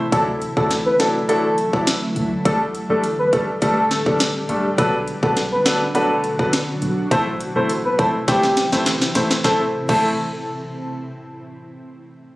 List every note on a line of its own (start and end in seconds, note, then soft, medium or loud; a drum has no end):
0.00 0.10 A2 medium
0.00 0.10 C3 medium
0.00 0.10 E3 medium
0.00 0.10 C4 medium
0.00 0.10 E4 medium
0.12 0.47 D2 loud
0.12 4.74 D3 medium
0.12 2.43 E3 medium
0.12 0.26 F#3 loud
0.12 2.43 F#3 medium
0.12 2.43 A3 medium
0.12 0.27 D4 medium
0.12 2.43 E4 medium
0.12 0.27 E4 medium
0.12 0.23 A4 medium
0.12 0.27 A4 loud
0.12 kick loud
0.12 closed hi-hat medium
0.42 closed hi-hat medium
0.57 0.91 D2 loud
0.57 0.69 F#3 medium
0.57 0.69 D4 medium
0.57 0.70 E4 medium
0.57 0.67 A4 medium
0.57 0.70 A4 medium
0.57 kick loud
0.71 snare medium
0.71 closed hi-hat medium
0.86 0.96 B4 medium
0.99 1.14 F#3 medium
0.99 1.14 D4 medium
0.99 1.14 E4 medium
0.99 1.10 A4 medium
0.99 1.14 A4 medium
0.99 snare loud
0.99 closed hi-hat soft
1.29 1.43 F#3 medium
1.29 1.43 D4 medium
1.29 1.43 E4 medium
1.29 1.71 A4 loud
1.29 1.43 A4 loud
1.29 closed hi-hat medium
1.58 closed hi-hat medium
1.73 1.86 F#3 medium
1.73 1.86 D4 medium
1.73 1.86 E4 medium
1.73 1.86 A4 medium
1.73 kick medium
1.87 snare loud
1.87 closed hi-hat medium
2.16 2.39 D2 medium
2.16 closed hi-hat medium
2.45 2.81 G1 loud
2.45 4.76 A2 medium
2.45 2.59 G3 medium
2.45 4.76 G3 medium
2.45 2.59 A3 medium
2.45 7.07 D4 medium
2.45 2.60 D4 medium
2.45 4.76 G4 medium
2.45 2.56 A4 loud
2.45 2.60 A4 loud
2.45 kick loud
2.45 closed hi-hat medium
2.75 closed hi-hat soft
2.90 3.24 G1 loud
2.90 3.02 G3 medium
2.90 3.02 A3 medium
2.90 3.03 D4 medium
2.90 2.99 A4 medium
2.90 3.03 A4 medium
3.04 closed hi-hat medium
3.19 3.29 B4 medium
3.32 3.47 G3 medium
3.32 3.47 A3 medium
3.32 3.47 D4 medium
3.32 3.44 A4 medium
3.32 3.47 A4 medium
3.32 kick loud
3.32 closed hi-hat soft
3.62 3.97 G1 loud
3.62 3.76 G3 medium
3.62 3.76 A3 medium
3.62 3.76 D4 medium
3.62 4.04 A4 loud
3.62 3.76 A4 loud
3.62 kick loud
3.62 closed hi-hat medium
3.91 snare medium
3.91 closed hi-hat medium
4.06 4.29 F#1 medium
4.06 4.19 G3 medium
4.06 4.19 A3 medium
4.06 4.19 D4 medium
4.06 4.19 A4 medium
4.06 kick medium
4.20 snare loud
4.20 closed hi-hat medium
4.49 4.61 G1 medium
4.49 4.63 G3 medium
4.49 4.63 A3 medium
4.49 4.63 D4 medium
4.49 4.64 A4 medium
4.49 closed hi-hat medium
4.78 5.13 B1 loud
4.78 7.09 B2 medium
4.78 7.09 D3 medium
4.78 4.92 F#3 loud
4.78 7.09 F#3 medium
4.78 4.92 B3 medium
4.78 4.93 D4 medium
4.78 7.09 F#4 medium
4.78 4.89 A4 medium
4.78 4.93 B4 loud
4.78 kick loud
4.78 closed hi-hat medium
5.08 closed hi-hat medium
5.23 5.57 B1 loud
5.23 5.35 F#3 medium
5.23 5.35 B3 medium
5.23 5.36 D4 medium
5.23 5.33 A4 medium
5.23 5.36 B4 medium
5.23 kick loud
5.37 snare medium
5.37 closed hi-hat medium
5.52 5.62 B4 medium
5.65 5.80 F#3 medium
5.65 5.80 B3 medium
5.65 5.80 D4 medium
5.65 5.77 A4 medium
5.65 5.80 B4 medium
5.65 snare loud
5.65 closed hi-hat soft
5.95 6.09 F#3 medium
5.95 6.09 B3 medium
5.95 6.09 D4 medium
5.95 6.37 A4 loud
5.95 6.09 B4 loud
5.95 closed hi-hat medium
6.24 closed hi-hat medium
6.39 6.52 F#3 medium
6.39 6.52 B3 medium
6.39 6.52 D4 medium
6.39 6.52 B4 medium
6.39 kick loud
6.53 snare loud
6.53 closed hi-hat medium
6.82 7.05 B1 medium
6.82 closed hi-hat medium
7.11 7.46 A1 loud
7.11 9.42 A2 medium
7.11 9.42 C3 medium
7.11 9.42 E3 medium
7.11 7.25 A3 loud
7.11 7.25 C4 medium
7.11 9.42 C4 medium
7.11 9.42 E4 medium
7.11 7.26 E4 medium
7.11 7.22 A4 medium
7.11 7.26 C5 loud
7.11 kick loud
7.11 closed hi-hat medium
7.41 closed hi-hat medium
7.56 7.90 A1 medium
7.56 7.68 A3 medium
7.56 7.68 C4 medium
7.56 7.69 E4 medium
7.56 7.65 A4 medium
7.56 7.69 C5 medium
7.69 closed hi-hat medium
7.85 7.95 B4 medium
7.99 8.13 A3 medium
7.99 8.13 C4 medium
7.99 8.13 E4 medium
7.99 8.10 A4 medium
7.99 8.13 C5 medium
7.99 kick loud
7.99 closed hi-hat soft
8.28 8.63 A1 loud
8.28 8.42 A3 medium
8.28 8.42 C4 medium
8.28 8.42 E4 medium
8.28 8.70 G4 loud
8.28 8.42 C5 loud
8.28 kick loud
8.28 snare medium
8.28 closed hi-hat medium
8.43 snare medium
8.57 snare medium
8.57 closed hi-hat medium
8.72 8.95 G1 loud
8.72 8.85 A3 medium
8.72 8.85 C4 medium
8.72 8.85 E4 medium
8.72 8.85 C5 medium
8.72 snare medium
8.86 snare medium
8.86 closed hi-hat medium
9.02 snare medium
9.15 9.27 A1 medium
9.15 9.29 A3 medium
9.15 9.29 C4 medium
9.15 9.29 E4 medium
9.15 9.30 C5 medium
9.15 snare loud
9.15 closed hi-hat medium
9.31 snare medium
9.44 9.61 A1 loud
9.44 9.61 A3 medium
9.44 9.61 C4 medium
9.44 9.61 E4 medium
9.44 9.61 A4 medium
9.44 9.62 C5 loud
9.44 kick loud
9.44 snare medium
9.89 10.16 A1 loud
9.89 10.10 A3 medium
9.89 10.10 C4 medium
9.89 10.11 E4 medium
9.89 10.16 A4 medium
9.89 10.11 C5 loud
9.89 kick loud
9.89 crash medium